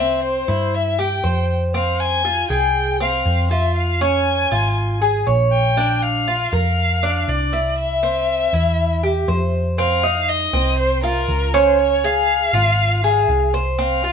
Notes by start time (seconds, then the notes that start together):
Already playing: C2 C4 E5
0.24 C5
0.48 G2 E4
0.75 E5
0.99 G4 G5
1.24 F2 C5
1.74 C4 F5
2.01 G#5
2.25 F4
2.50 C2 G#4 G5
3.00 C4 F5
3.26 F2
3.51 F4 E5
3.77 F5
4.01 C#4 G#5
4.51 G#1 F4
5.02 G#4
5.27 A#1 C#5
5.52 G5
5.77 D4
6.03 F5
6.28 F4
6.53 F2 A#4 F5
7.03 D4
7.28 C2 D5
7.53 E4
7.79 E5
8.03 C4
8.53 E2 E4
9.03 G4
9.28 F2 C5
9.78 C4 F5
10.03 D#4
10.29 D#5
10.53 C2 C4
10.79 C5
11.03 F4 A#4
11.28 C#2
11.54 C#4 C5
11.79 C#5
12.04 G#4 F5
12.53 G#1 F4
13.04 G#4
13.28 C2
13.54 C5
13.78 C4 F5
14.04 F4